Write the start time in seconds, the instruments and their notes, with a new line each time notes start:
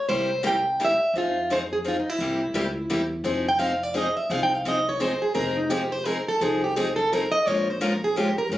0.09 upright bass C2, steel-string acoustic guitar C3 G3 A#3 E4 G4 C5
0.43 steel-string acoustic guitar C3 G3 A#3 E4 G4 G5
0.80 steel-string acoustic guitar C3 G3 A#3 E4 G4
0.85 steel-string acoustic guitar E5
1.14 upright bass F2, steel-string acoustic guitar F3 C4 D#4 G#4
1.18 steel-string acoustic guitar F4
1.50 steel-string acoustic guitar F3 C4 D#4 G#4 C5
1.73 steel-string acoustic guitar G#4
1.85 steel-string acoustic guitar F3 C4 D#4 F4 G#4
1.99 steel-string acoustic guitar D#4
2.10 steel-string acoustic guitar E4
2.19 upright bass C2, steel-string acoustic guitar C3 G3 A#3 E4 G4
2.54 upright bass C#2, steel-string acoustic guitar C3 G3 A#3 E4 G4
2.90 upright bass E2, steel-string acoustic guitar C3 G3 A#3 E4 G4
3.24 upright bass F1, steel-string acoustic guitar F3 C4 D#4 G#4
3.49 steel-string acoustic guitar G5
3.59 steel-string acoustic guitar F3 C4 D#4 G#4 F5
3.83 steel-string acoustic guitar D5
3.94 steel-string acoustic guitar F3 C4 D#4 G#4 D#5
4.17 steel-string acoustic guitar E5
4.30 upright bass C2, steel-string acoustic guitar F3 C4 D#4 G#4 F5
4.43 steel-string acoustic guitar G5
4.55 steel-string acoustic guitar F5
4.65 steel-string acoustic guitar F3 C4 D#4 G#4 D#5
4.89 steel-string acoustic guitar C#5
5.00 steel-string acoustic guitar F3 C4 D#4 G#4 C5
5.22 steel-string acoustic guitar G#4
5.34 upright bass F1, steel-string acoustic guitar F3 C4 D#4 G#4 A#4
5.57 steel-string acoustic guitar D#4
5.70 steel-string acoustic guitar F3 C4 D#4 G4 G#4
5.92 steel-string acoustic guitar C5
6.05 steel-string acoustic guitar F3 C4 D#4 G#4 A#4
6.28 steel-string acoustic guitar A4
6.41 upright bass C2, steel-string acoustic guitar F3 C4 D#4 G#4
6.64 steel-string acoustic guitar G4
6.76 steel-string acoustic guitar F3 C4 D#4 G#4
6.96 steel-string acoustic guitar A4
7.12 steel-string acoustic guitar F3 C4 D#4 G#4 A#4
7.32 steel-string acoustic guitar D#5
7.47 upright bass A#1, steel-string acoustic guitar F3 G#3 C#4 F4 A#4 C#5
7.70 steel-string acoustic guitar C5
7.81 steel-string acoustic guitar F3 G#3 C#4 F4 A#4
8.04 steel-string acoustic guitar G#4
8.16 steel-string acoustic guitar F3 G#3 C#4 F4 G4 A#4
8.38 steel-string acoustic guitar A#4
8.49 upright bass F1, steel-string acoustic guitar F3 G#3 C#4 F4 A#4